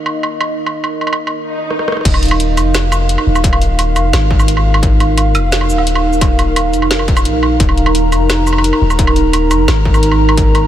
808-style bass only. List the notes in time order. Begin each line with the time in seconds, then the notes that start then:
2.05 D#1
2.57 F1
3.27 D#1
3.96 F1
4.13 G#1
5.35 F1
5.69 D#1
6.73 F1
7.08 D#1
7.25 A#1
7.60 D#1
8.12 F1
8.81 D#1
9.51 F1
9.68 G#1